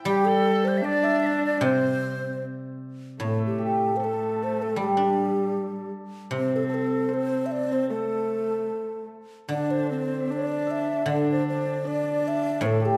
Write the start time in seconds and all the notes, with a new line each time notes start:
Already playing: C5 D5 E5
0.05 G3 G4
0.25 A4
0.65 C5
0.77 E5
0.82 D4 D5
1.04 E5
1.20 D5 E5
1.26 D5
1.45 D5
1.57 D5
1.61 C3 C4 C5
1.66 C5
3.20 A2 A3 A4
3.26 A4
3.46 G4
3.58 G4
3.65 G4
3.96 A4 C5
4.01 A3
4.05 A4
4.13 A4
4.23 A4
4.29 A4
4.36 A4
4.42 A4 C5
4.52 A4
4.61 A4
4.66 A4
4.76 G3 G4
4.81 G4
4.97 D4
6.31 C3 C5
6.35 C4 C5
6.56 A4
6.63 C5
6.68 A4 C5
6.75 A4
7.09 C4 C5
7.14 C5
7.46 E5
7.52 D5
7.68 C4 C5
7.73 C5
7.83 C5
7.90 A3 A4
9.49 D3 D4 D5
9.70 C5
9.77 C5
9.85 C5
9.90 C4 C5
10.01 C5
10.08 C5
10.13 C5
10.20 E5
10.28 D4 D5
10.32 D5
10.67 E5
10.71 E5
11.06 D3 D4 D5
11.10 D5
11.15 D5
11.24 D5
11.30 C5 D5
11.36 D5
11.43 D5
11.48 C5 D5
11.58 D5
11.65 D5
11.73 D5
11.85 D4 D5
11.92 D5
12.01 D5
12.11 D5
12.20 D5
12.27 D5 E5
12.34 D5
12.42 D5
12.50 D5
12.61 A2 A3 A4 C5
12.66 A4
12.80 G4
12.86 G4